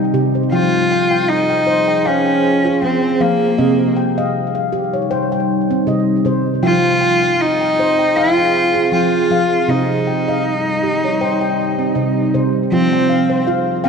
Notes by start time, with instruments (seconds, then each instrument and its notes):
Already playing: ambient pad C3 G3 D#4, handpan G5
0.14 handpan C3 G4
0.35 handpan C5
0.52 handpan F3 F4 G5, ambient pad F3 G#4 C5, cello F4
0.91 handpan G5
1.11 handpan G5
1.28 cello D#4
1.50 handpan G5
1.67 handpan C5
1.88 handpan G5
2.05 cello C#4, handpan F5 G5
2.26 handpan G5
2.65 handpan F4
2.82 handpan F3 G5, cello C4
3.20 handpan F3 F5, cello A#3
3.58 ambient pad C3 G3 D#4, handpan C3 C4 D#5
3.97 handpan G5
4.18 handpan D#5 F5
4.55 handpan F5
4.72 handpan G4
4.93 handpan C#5
5.11 handpan C5 G5
5.32 handpan G5
5.71 handpan C4
5.87 handpan C3 D#5
6.25 handpan C3 C5
6.63 handpan F3 F4 G5, ambient pad F3 C4 G#4, cello F4
7.01 handpan G5
7.22 handpan G5
7.40 cello D#4
7.61 handpan G5
7.80 handpan C5
7.99 handpan G5
8.16 cello F4, handpan F5 G5
8.37 handpan G5
8.75 handpan F4
8.92 handpan F3 G5, cello F4
9.30 handpan F3 F5
9.68 handpan C3 C4 D#5, ambient pad C3 G3 D#4, cello D#4
10.07 handpan G5
10.28 handpan D#5 F5
10.83 handpan G4
11.04 handpan C#5
11.21 handpan C5 G5
11.41 handpan G5
11.79 handpan C4
11.95 handpan C3 D#5
12.34 handpan C3 C5
12.72 ambient pad F3 C4 G#4, handpan F3 F4, cello C4
12.93 handpan G5
13.09 handpan F5
13.30 handpan C5
13.47 handpan F4 F5
13.84 handpan C4 F5 G5